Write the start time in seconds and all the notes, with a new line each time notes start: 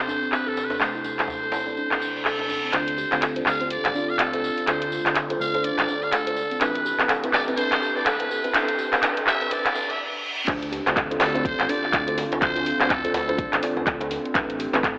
Already playing: C3 A4 C5
0.08 D4, tambourine, djembe tone
0.22 C4, tambourine
0.32 C4 B4, clap, tambourine
0.46 A4, tambourine, djembe tone
0.57 tambourine, djembe slap
0.64 B4
0.70 D4, tambourine, djembe slap, djembe tone
0.80 A3 C5, clap, tambourine
0.95 E4, tambourine
1.04 tambourine, djembe tone
1.19 clap, tambourine, djembe slap
1.28 tambourine, djembe tone, djembe bass
1.43 A4, tambourine
1.52 E4, tambourine, djembe slap
1.66 D5, tambourine, djembe tone
1.77 D4, tambourine, reverse cymbal
1.91 clap, tambourine, djembe tone
2.02 tambourine
2.16 D5, tambourine
2.25 A4, clap, tambourine, djembe tone
2.39 tambourine, djembe slap
2.49 tambourine, djembe tone
2.64 C4, tambourine
2.73 D2 D3 C4 D4 F4 A4 C5, clap, closed hi-hat, tambourine, riser
2.88 closed hi-hat, tambourine
2.98 G4, tambourine
3.12 D2 C4 D4 F4 A4 C5, clap, closed hi-hat, tambourine
3.22 A4, clap, closed hi-hat, tambourine
3.36 D4 F4 A4 C5, closed hi-hat, tambourine
3.46 D2 G4 F5, clap, tambourine
3.61 C4 D4 F4 A4 C5, closed hi-hat, tambourine
3.70 D5, closed hi-hat, tambourine
3.85 A1, clap, closed hi-hat, tambourine
3.95 D4 F4 A4 D5, tambourine
4.09 C4 F5, tambourine
4.19 D2 C4 A4, clap, closed hi-hat, tambourine
4.33 D4 F4 A4 C5, closed hi-hat, tambourine
4.44 tambourine
4.57 D4, closed hi-hat, tambourine
4.67 D2 A3 D4 F4 A4 C5, clap, closed hi-hat, tambourine
4.82 F4, closed hi-hat, tambourine
4.92 tambourine
5.06 D2 D4 F4 A4 C5, clap, closed hi-hat, tambourine
5.15 clap, closed hi-hat, tambourine
5.30 D4 F4 A4 C5, closed hi-hat, tambourine
5.40 D2 F4 F5, tambourine
5.54 D4 F4 A4 C5 D5, closed hi-hat, tambourine
5.64 D4 D5, closed hi-hat, tambourine
5.79 A1, clap, closed hi-hat, tambourine
5.88 D4 F4 A4 D5, tambourine
6.03 D5 F5, tambourine
6.12 D2 A4, clap, closed hi-hat, tambourine
6.27 D4 F4 A4 C5, closed hi-hat, tambourine
6.36 tambourine
6.51 C4, closed hi-hat, tambourine
6.60 A1 C3 C4 D4 E4 A4 B4, clap, closed hi-hat, tambourine
6.75 closed hi-hat, tambourine
6.85 G4, tambourine
6.99 A1 C4 E4 A4 B4, clap, closed hi-hat, tambourine
7.09 A4, clap, closed hi-hat, tambourine
7.23 C4 E4 A4 B4, closed hi-hat, tambourine
7.33 A1 G4 D5, clap, tambourine
7.47 C4 E4 A4 B4, closed hi-hat, tambourine
7.57 C4 D4 E4 A4 B4 C5, closed hi-hat, tambourine
7.72 E2, clap, closed hi-hat, tambourine
7.82 G4, tambourine
7.95 C4 E4 A4 B4 D5, tambourine
8.05 A1 A4 B4, clap, closed hi-hat, tambourine
8.20 C4 E4 A4 B4, closed hi-hat, tambourine
8.30 G4, tambourine
8.44 C4 E4 A4 B4, closed hi-hat, tambourine
8.53 A1 C4 D4 E4 A4 B4 C5, clap, closed hi-hat, tambourine
8.68 closed hi-hat, tambourine
8.78 G4, tambourine
8.92 A1 C4 E4 A4 B4, clap, closed hi-hat, tambourine
9.02 C4 D4 E4 A4 B4, clap, closed hi-hat, tambourine
9.17 closed hi-hat, tambourine
9.27 A1 G4 E5, clap, tambourine
9.41 C4 E4 A4 B4, closed hi-hat, tambourine
9.51 C4 D4 E4 A4 B4 D5, closed hi-hat, tambourine, reverse cymbal
9.66 E2, clap, closed hi-hat, tambourine
9.75 C4 D4 E4 A4 B4, tambourine
9.90 E5, closed hi-hat, tambourine
10.48 D2 D3 C4 D4 F4 A4 C5, kick, clap, closed hi-hat, crash, djembe tone
10.62 closed hi-hat
10.72 G4, open hi-hat, djembe tone
10.86 D2 C4 D4 F4 A4 C5, clap, closed hi-hat, djembe slap
10.96 A4, kick, clap, closed hi-hat
11.11 D4 F4 A4 C5, closed hi-hat, djembe tone
11.20 D2 G4 A4, clap, open hi-hat, djembe slap
11.35 C4 D4 F4 A4 C5, closed hi-hat, djembe tone
11.45 C5, kick, closed hi-hat, djembe bass
11.59 A1, clap, closed hi-hat
11.69 D4 F4 A4 D5, open hi-hat, djembe tone
11.83 C4, clap
11.93 D2 C4, kick, clap, closed hi-hat, djembe tone
12.08 D4 F4 A4 C5, closed hi-hat
12.18 open hi-hat, djembe slap
12.32 D4, closed hi-hat, djembe slap, djembe tone
12.42 D2 A3 D4 F4 A4 C5, kick, clap, closed hi-hat
12.56 F4, closed hi-hat, djembe tone
12.66 open hi-hat
12.80 D2 D4 F4 A4 C5, clap, closed hi-hat, djembe slap
12.90 A4, kick, clap, closed hi-hat, djembe tone, djembe bass
13.04 D4 F4 A4 C5, closed hi-hat
13.14 D2 F4 A4, open hi-hat, djembe slap, djembe tone
13.29 D4 F4 A4 C5 D5, closed hi-hat
13.38 D4, kick, closed hi-hat
13.53 A1, clap, closed hi-hat, djembe tone
13.62 D4 F4 A4 D5, clap, open hi-hat
13.77 D5, djembe tone
13.87 D2 A4, kick, clap, closed hi-hat
14.01 D4 F4 A4 C5, closed hi-hat, djembe slap
14.11 open hi-hat, djembe tone
14.25 C4, closed hi-hat
14.35 A1 A3 C4 D4 E4 A4 B4, kick, clap, closed hi-hat, djembe tone
14.50 closed hi-hat
14.59 G4, open hi-hat
14.73 A1 C4 E4 A4 B4, clap, closed hi-hat, djembe slap, djembe tone
14.83 A4, kick, clap, closed hi-hat